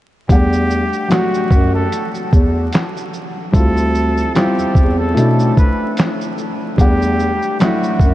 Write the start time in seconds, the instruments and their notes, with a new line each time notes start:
0.29 bass clarinet E2, upright piano G3 A3 D4 F#5, muted trumpet G4, kick, closed hi-hat, shaker
0.53 shaker
0.70 shaker
0.93 shaker
1.08 upright piano F#3 A3 D4 F#4, muted trumpet F#4, snare, clap, closed hi-hat, shaker
1.34 shaker
1.51 bass clarinet F#2, kick, shaker
1.75 muted trumpet A4
1.92 closed hi-hat, shaker
2.15 shaker
2.33 bass clarinet E2, kick, shaker
2.73 snare, clap, closed hi-hat, shaker
2.97 shaker
3.14 shaker
3.52 bass clarinet D2, upright piano G3 C4 E4 F4, muted trumpet A4, kick, closed hi-hat, shaker
3.77 shaker
3.95 shaker
4.17 shaker
4.34 upright piano G3 C4 E4 F4, muted trumpet G4, snare, clap, closed hi-hat, shaker
4.58 bass clarinet E2, shaker
4.75 bass clarinet E2, kick, shaker
4.99 muted trumpet A4
5.15 bass clarinet B2, upright piano A3 C#4 D4 E4, closed hi-hat, shaker
5.39 shaker
5.57 muted trumpet B4, kick, shaker
5.97 snare, clap, closed hi-hat, shaker
6.21 shaker
6.38 shaker
6.77 bass clarinet E2, upright piano G3 A3 D4 F#5, muted trumpet G4, kick, closed hi-hat, shaker
7.02 shaker
7.19 shaker
7.42 shaker
7.60 upright piano F#3 A3 D4 E4, muted trumpet F#4, snare, clap, closed hi-hat, shaker
7.83 shaker
8.00 bass clarinet F#2, kick, shaker